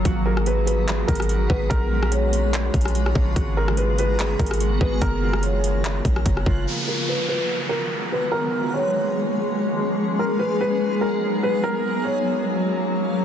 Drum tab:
HH |x-----------x-----x-----x-----x-x-x-x-----------|x-----------x-----x-----x-----x-x-x-x-----------|x-----------x-----x-----x-----x-x-x-x-----------|x-----------x-----x-----x-----x-----x-----------|
CP |------------------------x-----------------------|------------------------x-----------------------|------------------------x-----------------------|------------------------x-----------------------|
SD |---------r-----------------------r--------------|---------r-----------------------r-----r--------|---------r-----------------------r--------------|---------r-----------------------r-----r--------|
BD |o-----------------------------o-----------o-----|o-----------------------------o-----------o-----|o-----------------------------o-----------o-----|o-----------------------------o-----o-----o-----|

HH |------------------------------------------------|------------------------------------------------|------------------------------------------------|------------------------------------------------|
CP |------------------------------------------------|------------------------------------------------|------------------------------------------------|------------------------------------------------|
SD |------------------------------------------------|------------------------------------------------|------------------------------------------------|------------------------------------------------|
BD |------------------------------------------------|------------------------------------------------|------------------------------------------------|------------------------------------------------|